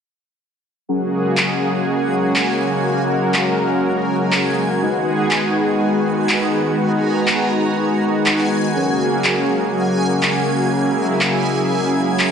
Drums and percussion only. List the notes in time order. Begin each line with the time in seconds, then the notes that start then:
1.37 clap
2.36 clap
3.34 clap
4.33 clap
5.31 clap
6.29 clap
7.28 clap
8.26 clap
8.39 clap
9.24 clap
10.23 clap
11.21 clap
12.19 clap